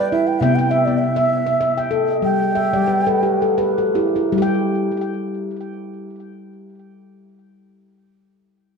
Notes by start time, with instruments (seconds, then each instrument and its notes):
Already playing: handpan B4
0.00 bansuri D5, handpan G5
0.12 handpan E4, bansuri E5
0.27 bansuri G5
0.40 handpan C3 B3 G5, bansuri E5
0.55 bansuri G5, handpan G5
0.70 bansuri E5, handpan E5
0.85 handpan B3, bansuri D5
0.99 bansuri E5
1.16 handpan E5
1.47 handpan E5
1.61 handpan E5
1.78 handpan G5
1.91 handpan A4
2.22 handpan G3, bansuri G5
2.55 handpan E5
2.73 handpan G3 D5
2.88 handpan B4
3.07 handpan A4 B4
3.23 handpan G4
3.42 handpan A4
3.58 handpan G4 B4
3.78 handpan A4
3.95 handpan E4 G4
4.16 handpan E4
4.32 handpan G3
4.38 handpan G4
4.42 handpan G5